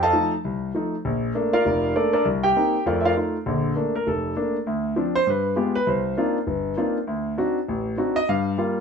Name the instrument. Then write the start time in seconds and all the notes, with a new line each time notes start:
grand piano
0.03 A4 D#5 F5 A5
0.13 F3 A3 D#4
0.45 C2
0.75 F3 A3 D#4
1.05 A#1
1.35 A3 A#3 D4
1.53 F4 A#4 D5 F5
1.65 F1
1.95 A3 A#3 D4 A4 A#4 D5
2.13 D4 A4 A#4 D5
2.25 C2
2.43 G4 G5
2.56 A#3 C4 D#4
2.86 F2 A3 F4 A#4 D5 F5
3.01 E5
3.05 F4 A#4 D5 F5
3.16 A3 D#4 F4
3.46 A#1 D3
3.75 A3 A#3 D4
3.95 A#4
4.07 F1 A4
4.37 A3 A#3 D4
4.67 D2
4.96 F3 C4 D4
5.15 C5
5.27 G2 B4
5.56 G#3 B3 F4 G4
5.75 B4
5.87 C2 C5
6.17 A#3 C4 D4 D#4 F4
6.47 G1
6.77 A#3 C4 D4 D#4 F4
7.07 D2
7.38 C4 D4 D#4 F#4
7.68 A1
7.97 C4 D4 D#4 F#4
8.16 D#5
8.29 G2 F5
8.58 G3 A#3 F4